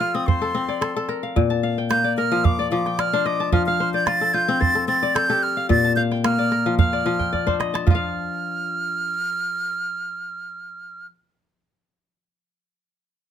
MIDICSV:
0, 0, Header, 1, 4, 480
1, 0, Start_track
1, 0, Tempo, 542495
1, 1205, Time_signature, 4, 2, 24, 8
1, 11769, End_track
2, 0, Start_track
2, 0, Title_t, "Flute"
2, 0, Program_c, 0, 73
2, 0, Note_on_c, 0, 89, 96
2, 130, Note_on_c, 0, 87, 85
2, 143, Note_off_c, 0, 89, 0
2, 234, Note_on_c, 0, 84, 92
2, 248, Note_off_c, 0, 87, 0
2, 960, Note_off_c, 0, 84, 0
2, 1683, Note_on_c, 0, 91, 98
2, 1907, Note_off_c, 0, 91, 0
2, 1922, Note_on_c, 0, 89, 89
2, 2164, Note_on_c, 0, 86, 97
2, 2177, Note_off_c, 0, 89, 0
2, 2395, Note_off_c, 0, 86, 0
2, 2400, Note_on_c, 0, 86, 85
2, 2650, Note_on_c, 0, 89, 97
2, 2664, Note_off_c, 0, 86, 0
2, 2887, Note_on_c, 0, 86, 85
2, 2901, Note_off_c, 0, 89, 0
2, 3119, Note_off_c, 0, 86, 0
2, 3124, Note_on_c, 0, 89, 90
2, 3234, Note_off_c, 0, 89, 0
2, 3240, Note_on_c, 0, 89, 90
2, 3468, Note_off_c, 0, 89, 0
2, 3485, Note_on_c, 0, 91, 100
2, 3592, Note_on_c, 0, 93, 109
2, 3606, Note_off_c, 0, 91, 0
2, 3839, Note_on_c, 0, 91, 102
2, 3852, Note_off_c, 0, 93, 0
2, 4075, Note_on_c, 0, 93, 115
2, 4088, Note_off_c, 0, 91, 0
2, 4314, Note_off_c, 0, 93, 0
2, 4319, Note_on_c, 0, 93, 97
2, 4557, Note_on_c, 0, 91, 106
2, 4570, Note_off_c, 0, 93, 0
2, 4804, Note_on_c, 0, 89, 93
2, 4817, Note_off_c, 0, 91, 0
2, 5038, Note_off_c, 0, 89, 0
2, 5043, Note_on_c, 0, 93, 105
2, 5267, Note_off_c, 0, 93, 0
2, 5272, Note_on_c, 0, 91, 81
2, 5327, Note_off_c, 0, 91, 0
2, 5527, Note_on_c, 0, 89, 91
2, 5972, Note_off_c, 0, 89, 0
2, 6011, Note_on_c, 0, 89, 85
2, 6692, Note_off_c, 0, 89, 0
2, 6960, Note_on_c, 0, 89, 89
2, 9792, Note_off_c, 0, 89, 0
2, 11769, End_track
3, 0, Start_track
3, 0, Title_t, "Kora"
3, 0, Program_c, 1, 46
3, 0, Note_on_c, 1, 53, 85
3, 0, Note_on_c, 1, 67, 69
3, 0, Note_on_c, 1, 69, 66
3, 0, Note_on_c, 1, 72, 68
3, 0, Note_on_c, 1, 74, 58
3, 0, Note_on_c, 1, 77, 61
3, 4, Note_on_c, 1, 65, 69
3, 129, Note_on_c, 1, 60, 80
3, 176, Note_off_c, 1, 67, 0
3, 243, Note_off_c, 1, 72, 0
3, 247, Note_on_c, 1, 72, 74
3, 288, Note_off_c, 1, 77, 0
3, 364, Note_off_c, 1, 69, 0
3, 368, Note_on_c, 1, 69, 67
3, 479, Note_off_c, 1, 60, 0
3, 483, Note_on_c, 1, 60, 81
3, 602, Note_off_c, 1, 74, 0
3, 606, Note_on_c, 1, 74, 64
3, 716, Note_off_c, 1, 69, 0
3, 719, Note_on_c, 1, 69, 68
3, 850, Note_off_c, 1, 69, 0
3, 854, Note_on_c, 1, 69, 80
3, 963, Note_on_c, 1, 70, 68
3, 1088, Note_on_c, 1, 77, 66
3, 1205, Note_on_c, 1, 46, 79
3, 1249, Note_off_c, 1, 53, 0
3, 1258, Note_off_c, 1, 69, 0
3, 1298, Note_off_c, 1, 72, 0
3, 1327, Note_on_c, 1, 81, 62
3, 1343, Note_off_c, 1, 65, 0
3, 1381, Note_off_c, 1, 70, 0
3, 1441, Note_off_c, 1, 77, 0
3, 1445, Note_on_c, 1, 77, 68
3, 1575, Note_on_c, 1, 79, 60
3, 1586, Note_off_c, 1, 74, 0
3, 1684, Note_on_c, 1, 58, 71
3, 1737, Note_off_c, 1, 81, 0
3, 1807, Note_on_c, 1, 74, 65
3, 1926, Note_on_c, 1, 70, 69
3, 2049, Note_on_c, 1, 53, 83
3, 2075, Note_off_c, 1, 60, 0
3, 2157, Note_off_c, 1, 77, 0
3, 2161, Note_on_c, 1, 77, 72
3, 2287, Note_off_c, 1, 74, 0
3, 2291, Note_on_c, 1, 74, 65
3, 2393, Note_off_c, 1, 53, 0
3, 2399, Note_off_c, 1, 79, 0
3, 2403, Note_on_c, 1, 53, 82
3, 2534, Note_on_c, 1, 79, 62
3, 2641, Note_off_c, 1, 74, 0
3, 2644, Note_on_c, 1, 74, 62
3, 2773, Note_on_c, 1, 62, 83
3, 2773, Note_on_c, 1, 72, 69
3, 2880, Note_on_c, 1, 75, 64
3, 3009, Note_on_c, 1, 81, 61
3, 3044, Note_off_c, 1, 77, 0
3, 3062, Note_off_c, 1, 58, 0
3, 3062, Note_off_c, 1, 70, 0
3, 3108, Note_off_c, 1, 53, 0
3, 3119, Note_on_c, 1, 53, 88
3, 3169, Note_off_c, 1, 46, 0
3, 3252, Note_on_c, 1, 77, 64
3, 3358, Note_off_c, 1, 79, 0
3, 3360, Note_off_c, 1, 72, 0
3, 3363, Note_on_c, 1, 72, 69
3, 3483, Note_off_c, 1, 74, 0
3, 3486, Note_on_c, 1, 74, 56
3, 3539, Note_off_c, 1, 75, 0
3, 3604, Note_on_c, 1, 65, 78
3, 3727, Note_on_c, 1, 69, 68
3, 3778, Note_off_c, 1, 81, 0
3, 3838, Note_off_c, 1, 65, 0
3, 3841, Note_on_c, 1, 65, 72
3, 3968, Note_on_c, 1, 60, 92
3, 4074, Note_off_c, 1, 72, 0
3, 4077, Note_on_c, 1, 72, 77
3, 4135, Note_off_c, 1, 77, 0
3, 4200, Note_off_c, 1, 69, 0
3, 4204, Note_on_c, 1, 69, 70
3, 4259, Note_off_c, 1, 62, 0
3, 4313, Note_off_c, 1, 60, 0
3, 4317, Note_on_c, 1, 60, 78
3, 4443, Note_off_c, 1, 74, 0
3, 4447, Note_on_c, 1, 74, 71
3, 4555, Note_off_c, 1, 69, 0
3, 4559, Note_on_c, 1, 69, 65
3, 4682, Note_off_c, 1, 69, 0
3, 4686, Note_on_c, 1, 67, 66
3, 4686, Note_on_c, 1, 69, 71
3, 4927, Note_on_c, 1, 77, 61
3, 5037, Note_on_c, 1, 46, 88
3, 5088, Note_off_c, 1, 53, 0
3, 5090, Note_off_c, 1, 69, 0
3, 5128, Note_off_c, 1, 72, 0
3, 5170, Note_on_c, 1, 81, 63
3, 5180, Note_off_c, 1, 65, 0
3, 5278, Note_off_c, 1, 77, 0
3, 5281, Note_on_c, 1, 77, 68
3, 5410, Note_on_c, 1, 79, 66
3, 5427, Note_off_c, 1, 74, 0
3, 5522, Note_on_c, 1, 58, 87
3, 5575, Note_off_c, 1, 81, 0
3, 5651, Note_on_c, 1, 74, 70
3, 5766, Note_on_c, 1, 70, 71
3, 5892, Note_on_c, 1, 53, 78
3, 5909, Note_off_c, 1, 60, 0
3, 5935, Note_off_c, 1, 67, 0
3, 6002, Note_off_c, 1, 77, 0
3, 6006, Note_on_c, 1, 77, 83
3, 6127, Note_off_c, 1, 74, 0
3, 6130, Note_on_c, 1, 74, 68
3, 6233, Note_off_c, 1, 53, 0
3, 6234, Note_off_c, 1, 79, 0
3, 6244, Note_on_c, 1, 53, 80
3, 6363, Note_on_c, 1, 79, 61
3, 6478, Note_off_c, 1, 74, 0
3, 6482, Note_on_c, 1, 74, 60
3, 6606, Note_on_c, 1, 62, 72
3, 6606, Note_on_c, 1, 72, 65
3, 6722, Note_on_c, 1, 75, 64
3, 6846, Note_on_c, 1, 81, 66
3, 6889, Note_off_c, 1, 77, 0
3, 6899, Note_off_c, 1, 58, 0
3, 6899, Note_off_c, 1, 70, 0
3, 6949, Note_off_c, 1, 53, 0
3, 6960, Note_on_c, 1, 53, 69
3, 6994, Note_on_c, 1, 65, 80
3, 7008, Note_off_c, 1, 46, 0
3, 7032, Note_on_c, 1, 77, 80
3, 7188, Note_off_c, 1, 79, 0
3, 7462, Note_off_c, 1, 74, 0
3, 7616, Note_off_c, 1, 81, 0
3, 7657, Note_off_c, 1, 72, 0
3, 7669, Note_off_c, 1, 75, 0
3, 8092, Note_off_c, 1, 62, 0
3, 9827, Note_off_c, 1, 53, 0
3, 9860, Note_off_c, 1, 65, 0
3, 9899, Note_off_c, 1, 77, 0
3, 11769, End_track
4, 0, Start_track
4, 0, Title_t, "Calabash"
4, 248, Note_on_c, 9, 36, 76
4, 337, Note_off_c, 9, 36, 0
4, 615, Note_on_c, 9, 38, 20
4, 704, Note_off_c, 9, 38, 0
4, 726, Note_on_c, 9, 38, 62
4, 815, Note_off_c, 9, 38, 0
4, 961, Note_on_c, 9, 38, 23
4, 1050, Note_off_c, 9, 38, 0
4, 1210, Note_on_c, 9, 36, 71
4, 1298, Note_off_c, 9, 36, 0
4, 1687, Note_on_c, 9, 38, 59
4, 1775, Note_off_c, 9, 38, 0
4, 2168, Note_on_c, 9, 36, 69
4, 2257, Note_off_c, 9, 36, 0
4, 2530, Note_on_c, 9, 38, 21
4, 2619, Note_off_c, 9, 38, 0
4, 2644, Note_on_c, 9, 38, 64
4, 2733, Note_off_c, 9, 38, 0
4, 2886, Note_on_c, 9, 38, 22
4, 2974, Note_off_c, 9, 38, 0
4, 3119, Note_on_c, 9, 36, 63
4, 3208, Note_off_c, 9, 36, 0
4, 3600, Note_on_c, 9, 38, 62
4, 3689, Note_off_c, 9, 38, 0
4, 4089, Note_on_c, 9, 36, 63
4, 4178, Note_off_c, 9, 36, 0
4, 4455, Note_on_c, 9, 38, 19
4, 4544, Note_off_c, 9, 38, 0
4, 4566, Note_on_c, 9, 38, 65
4, 4654, Note_off_c, 9, 38, 0
4, 4809, Note_on_c, 9, 38, 19
4, 4898, Note_off_c, 9, 38, 0
4, 5045, Note_on_c, 9, 36, 64
4, 5133, Note_off_c, 9, 36, 0
4, 5414, Note_on_c, 9, 38, 18
4, 5502, Note_off_c, 9, 38, 0
4, 5525, Note_on_c, 9, 38, 68
4, 5614, Note_off_c, 9, 38, 0
4, 5767, Note_on_c, 9, 38, 18
4, 5855, Note_off_c, 9, 38, 0
4, 6004, Note_on_c, 9, 36, 67
4, 6093, Note_off_c, 9, 36, 0
4, 6134, Note_on_c, 9, 38, 16
4, 6222, Note_off_c, 9, 38, 0
4, 6247, Note_on_c, 9, 38, 20
4, 6336, Note_off_c, 9, 38, 0
4, 6371, Note_on_c, 9, 36, 35
4, 6459, Note_off_c, 9, 36, 0
4, 6491, Note_on_c, 9, 36, 39
4, 6580, Note_off_c, 9, 36, 0
4, 6617, Note_on_c, 9, 36, 45
4, 6706, Note_off_c, 9, 36, 0
4, 6730, Note_on_c, 9, 38, 55
4, 6818, Note_off_c, 9, 38, 0
4, 6860, Note_on_c, 9, 38, 59
4, 6948, Note_off_c, 9, 38, 0
4, 6968, Note_on_c, 9, 36, 88
4, 7056, Note_off_c, 9, 36, 0
4, 11769, End_track
0, 0, End_of_file